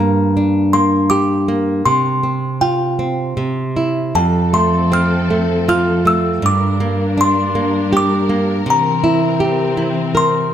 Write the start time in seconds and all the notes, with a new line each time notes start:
Already playing: G2 A#5
0.00 A#3
0.37 D4
0.73 A#3 C6
1.10 G4 D6
1.48 A#3
1.85 C3 C6
2.23 C4
2.61 F4 G5
2.99 C4
3.37 C3
3.76 E4
4.15 F2 F3 C4 A4 A5
4.53 A3 C6
4.92 C4 F6
5.30 A3
5.68 F4 F6
6.05 A3 E6
6.42 G2 G3 D4 A#4 D6
6.80 A#3
7.17 D4 C6
7.55 A#3
7.93 G4
7.97 D6
8.29 A#3
8.66 C3 E3 C4
8.70 A#5
9.04 E4
9.40 G4
9.77 E4
10.15 A#4 C6